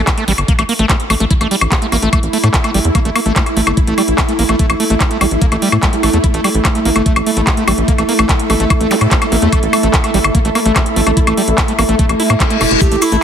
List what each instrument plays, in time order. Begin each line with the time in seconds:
Already playing: synth drone A3 E4, ambient pad E4 A4 E5
0.07 acid bass E4, kick, clap, closed hi-hat, high woodblock
0.18 acid bass A3, closed hi-hat
0.28 analog synth bass A1, acid bass G3, open hi-hat
0.38 analog synth bass G1, closed hi-hat, high woodblock
0.48 acid bass A#3, kick, closed hi-hat
0.59 analog synth bass A1, acid bass A3, closed hi-hat, high woodblock
0.69 acid bass A#3, open hi-hat
0.79 analog synth bass A1, acid bass A3, closed hi-hat
0.89 acid bass A3, kick, clap, closed hi-hat, high woodblock
1.00 closed hi-hat
1.10 analog synth bass A1, acid bass A3, open hi-hat, high woodblock
1.20 analog synth bass A1, acid bass A3, closed hi-hat
1.31 acid bass E4, kick, closed hi-hat
1.41 analog synth bass A1, acid bass A3, closed hi-hat, high woodblock
1.51 acid bass G3, open hi-hat
1.61 analog synth bass A1, closed hi-hat, high woodblock
1.72 acid bass A#3, kick, clap, closed hi-hat
1.82 acid bass A3, closed hi-hat
1.92 analog synth bass A1, acid bass A#3, open hi-hat, high woodblock
2.02 analog synth bass A1, acid bass A3, closed hi-hat
2.13 acid bass A3, kick, closed hi-hat, high woodblock
2.23 analog synth bass A1, closed hi-hat
2.33 acid bass A3, open hi-hat
2.44 analog synth bass A2, acid bass A3, closed hi-hat, high woodblock
2.54 acid bass E4, kick, clap, closed hi-hat
2.64 acid bass A3, closed hi-hat, high woodblock
2.74 analog synth bass A1, acid bass G3, open hi-hat
2.85 analog synth bass E2, closed hi-hat
2.95 acid bass A#3, kick, closed hi-hat, high woodblock
3.05 analog synth bass A1, acid bass A3, closed hi-hat
3.16 acid bass A#3, open hi-hat, high woodblock
3.26 analog synth bass A1, acid bass A3, closed hi-hat
3.36 acid bass A3, kick, clap, closed hi-hat
3.46 closed hi-hat, high woodblock
3.57 analog synth bass A1, acid bass A3, open hi-hat
3.67 analog synth bass G1, acid bass A3, closed hi-hat, high woodblock
3.77 acid bass E4, kick, closed hi-hat
3.87 analog synth bass A1, acid bass A3, closed hi-hat
3.98 acid bass G3, open hi-hat, high woodblock
4.08 analog synth bass A1, closed hi-hat
4.18 acid bass A#3, kick, clap, closed hi-hat, high woodblock
4.29 acid bass A3, closed hi-hat
4.39 analog synth bass A1, acid bass A#3, open hi-hat
4.49 analog synth bass A1, acid bass A3, closed hi-hat, high woodblock
4.59 acid bass A3, kick, closed hi-hat
4.70 analog synth bass A1, closed hi-hat, high woodblock
4.80 acid bass A3, open hi-hat
4.90 analog synth bass A1, acid bass A3, closed hi-hat
5.00 acid bass E4, kick, clap, closed hi-hat, high woodblock
5.11 acid bass A3, closed hi-hat
5.21 analog synth bass A1, acid bass G3, open hi-hat, high woodblock
5.31 analog synth bass A1, closed hi-hat
5.42 acid bass A#3, kick, closed hi-hat
5.52 analog synth bass A1, acid bass A3, closed hi-hat, high woodblock
5.62 acid bass G3, open hi-hat
5.72 analog synth bass A2, acid bass A3, closed hi-hat, high woodblock
5.83 acid bass G3, kick, clap, closed hi-hat
5.93 acid bass G3, closed hi-hat
6.03 analog synth bass A1, acid bass A3, open hi-hat, high woodblock
6.13 analog synth bass E2, acid bass A3, closed hi-hat
6.24 acid bass E4, synth drone A4, kick, closed hi-hat
6.34 analog synth bass A1, acid bass A3, closed hi-hat
6.44 acid bass G3, open hi-hat, high woodblock
6.55 analog synth bass A1, closed hi-hat
6.65 acid bass A#3, kick, clap, closed hi-hat, high woodblock
6.75 acid bass A3, closed hi-hat
6.85 analog synth bass A1, acid bass A#3, open hi-hat
6.96 analog synth bass G1, acid bass A3, closed hi-hat, high woodblock
7.06 acid bass A3, kick, closed hi-hat
7.16 analog synth bass A1, closed hi-hat, high woodblock
7.26 acid bass A3, open hi-hat
7.37 analog synth bass A1, acid bass A3, closed hi-hat
7.47 acid bass E4, kick, clap, closed hi-hat, high woodblock
7.57 acid bass A3, closed hi-hat
7.68 analog synth bass A1, acid bass G3, open hi-hat, high woodblock
7.78 analog synth bass A1, closed hi-hat
7.88 acid bass A#3, kick, closed hi-hat
7.98 analog synth bass A1, acid bass A3, closed hi-hat, high woodblock
8.09 acid bass A#3, open hi-hat
8.19 analog synth bass A1, acid bass A3, closed hi-hat, high woodblock
8.29 acid bass A3, kick, clap, closed hi-hat
8.39 closed hi-hat
8.50 analog synth bass A1, acid bass A3, open hi-hat, high woodblock
8.60 analog synth bass A1, acid bass A3, closed hi-hat
8.70 acid bass E4, kick, closed hi-hat, high woodblock
8.81 analog synth bass A1, acid bass A3, closed hi-hat
8.91 acid bass G3, open hi-hat, zap
9.01 analog synth bass A2, closed hi-hat, high woodblock
9.11 acid bass A#3, kick, clap, closed hi-hat
9.22 acid bass A3, closed hi-hat, high woodblock
9.32 analog synth bass A1, acid bass A#3, open hi-hat
9.42 analog synth bass E2, acid bass A3, closed hi-hat
9.52 acid bass A3, kick, closed hi-hat, high woodblock
9.63 analog synth bass A1, closed hi-hat
9.73 acid bass A3, open hi-hat, high woodblock
9.83 analog synth bass A1, acid bass A3, closed hi-hat
9.94 acid bass E4, kick, clap, closed hi-hat
10.04 acid bass A3, closed hi-hat, high woodblock
10.14 analog synth bass A1, acid bass G3, open hi-hat
10.24 analog synth bass G1, closed hi-hat, high woodblock
10.35 acid bass A#3, kick, closed hi-hat
10.45 analog synth bass A1, acid bass A3, closed hi-hat
10.55 acid bass A#3, open hi-hat, high woodblock
10.66 analog synth bass A1, acid bass A3, closed hi-hat
10.76 acid bass A3, kick, clap, closed hi-hat, high woodblock
10.86 closed hi-hat
10.96 analog synth bass A1, acid bass A3, open hi-hat
11.07 analog synth bass A1, acid bass A3, closed hi-hat, high woodblock
11.17 acid bass E4, kick, closed hi-hat
11.27 analog synth bass A1, acid bass A3, closed hi-hat, high woodblock
11.37 acid bass G3, open hi-hat
11.48 analog synth bass A1, closed hi-hat
11.58 acid bass A#3, kick, clap, closed hi-hat, high woodblock
11.68 acid bass A3, closed hi-hat
11.79 analog synth bass A1, acid bass A#3, open hi-hat, high woodblock
11.89 analog synth bass A1, acid bass A3, closed hi-hat
11.99 acid bass A3, kick, closed hi-hat, reverse cymbal
12.09 analog synth bass A1, closed hi-hat, high woodblock
12.20 acid bass E4, open hi-hat
12.30 analog synth bass A2, acid bass A#3, closed hi-hat, high woodblock
12.40 acid bass A3, kick, clap, closed hi-hat
12.50 acid bass A3, closed hi-hat
12.61 analog synth bass E1, acid bass A3, open hi-hat, high woodblock
12.71 analog synth bass E1, closed hi-hat
12.81 acid bass A3, analog synth lead G4, kick, closed hi-hat, cabasa
12.92 analog synth bass A1, acid bass A3, closed hi-hat, cabasa
13.02 analog synth lead E4, open hi-hat, cabasa, high woodblock
13.12 analog synth bass A1, acid bass A3, closed hi-hat, cabasa